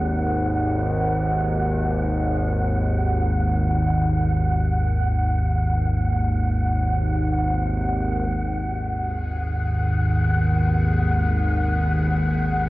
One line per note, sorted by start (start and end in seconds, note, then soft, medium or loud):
0.00 8.30 G#1 medium
0.00 8.30 D#2 medium
0.00 8.31 F#5 medium
8.31 12.69 G#1 medium
8.31 12.69 D#2 medium
8.31 12.69 D#3 medium
8.31 12.69 F#5 medium
9.03 12.69 G#4 medium
10.10 12.69 B3 medium